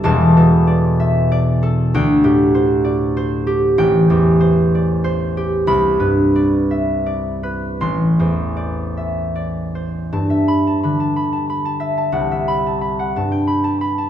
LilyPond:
<<
  \new Staff \with { instrumentName = "Harp" } { \time 6/8 \key g \major \tempo 4. = 61 << { a''2. | g''2. | g''2. | b''2. |
c'''2. | r8 b''2~ b''8~ | b''8 b''4. b''4 | } \\ { <a' d''>8 a'8 d''8 e''8 d''8 a'8~ | a'8 g'8 c''8 d''8 c''8 g'8~ | g'8 g'8 c''8 d''8 c''8 g'8~ | g'8 b'8 d''8 e''8 d''8 b'8~ |
b'8 c''8 d''8 e''8 d''8 c''8 | a''16 e''8 a''16 b''16 a''16 b''16 a''16 b''16 a''16 e''16 a''16 | fis''16 e''8 a''16 b''16 fis''16 a''16 g''8 a''16 b''16 a''16 | } >> }
  \new Staff \with { instrumentName = "Harp" } { \clef bass \time 6/8 \key g \major <e,, e, d'>8 b,2~ b,8 | d,8 a,2~ a,8 | a,,8 e,2~ e,8 | c,8 g,2~ g,8 |
a,,8 e,2~ e,8 | g,4 d2 | c,4. g,4. | }
>>